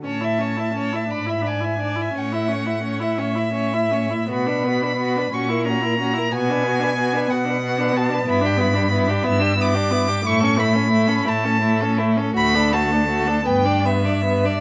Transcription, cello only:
0.05 0.98 A2 medium
1.11 2.04 G#2 medium
2.15 3.05 A2 medium
3.18 4.19 A2 medium
4.32 5.21 B2 medium
5.33 6.20 A#2 medium
6.33 7.19 B2 medium
7.31 8.17 B2 medium
8.28 9.15 G2 medium
9.27 10.15 G2 medium
10.27 11.16 A2 medium
11.26 12.22 A2 medium
12.35 13.34 D2 medium
13.48 14.52 G2 medium

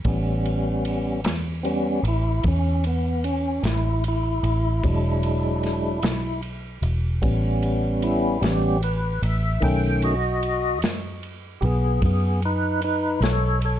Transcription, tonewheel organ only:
0.05 1.21 G3 soft
0.05 1.21 B3 soft
0.05 1.21 C#4 soft
1.63 2.00 G3 soft
1.63 2.00 B3 soft
1.63 1.67 C4 medium
1.63 2.04 C#4 medium
2.08 2.45 E4 medium
2.48 2.85 C#4 medium
2.87 3.24 B3 medium
3.24 3.63 C#4 medium
3.67 4.04 E4 medium
4.08 6.41 E4 medium
4.84 6.00 F#3 medium
4.84 6.00 G#3 soft
4.84 6.00 D4 medium
7.22 8.38 G3 medium
7.22 8.38 B3 soft
7.22 8.39 C#4 medium
8.04 8.42 E4 medium
8.41 8.78 G3 medium
8.41 8.78 B3 soft
8.41 8.78 C#4 medium
8.41 8.81 G4 medium
8.84 9.22 B4 medium
9.25 9.63 E5 medium
9.61 10.14 D#3 soft
9.61 10.15 A3 soft
9.61 10.16 C#4 medium
9.61 10.02 G5 medium
10.04 10.79 F#4 loud
10.04 10.81 D#5 loud
11.61 12.00 B3 medium
11.61 11.65 G4 medium
11.65 12.02 G#4 medium
12.05 12.41 B3 medium
12.05 12.43 G#4 medium
12.45 12.81 D#4 medium
12.45 12.82 B4 medium
12.84 13.20 D#4 medium
12.84 13.22 B4 loud
13.22 13.59 A4 medium
13.22 13.61 C#5 medium
13.65 13.80 A4 medium
13.65 13.80 C#5 medium

